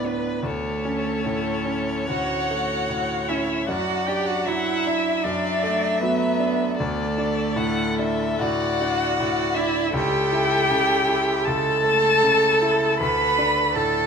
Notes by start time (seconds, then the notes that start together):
Already playing: A2 B3 D4 B4
0.04 D4 B4
0.43 D2 A3 A4 C#5
0.85 C#4
1.26 A2
1.65 C#4
2.10 D2 F#4 F#5
2.51 A3
2.89 A2
3.28 C#4 E4 E5
3.67 F#2 F#4 D5 F#5
4.06 D4 G4 G5
4.26 F#4 F#5
4.45 F#3 E4 E5 F#5
4.87 D4 E5
5.24 F#2 D4 D5
5.63 A3
5.99 B3 B4
6.03 F#3
6.40 D4
6.78 D2 A3 A4 D5
7.18 D4
7.56 A2 F#5
7.99 D4 E5
8.39 A2 F#4 D5 F#5
8.81 D4
9.19 A2 D5
9.54 D4 E4 E5
9.93 C#2 G4 A4 G5
10.32 E4
10.71 C#3
11.08 E4
11.45 C#2 A4 A5
11.84 A3
12.23 C#3
12.62 E4
12.99 D2 A4 B4 B5
13.38 D4
13.73 A2 A4 A5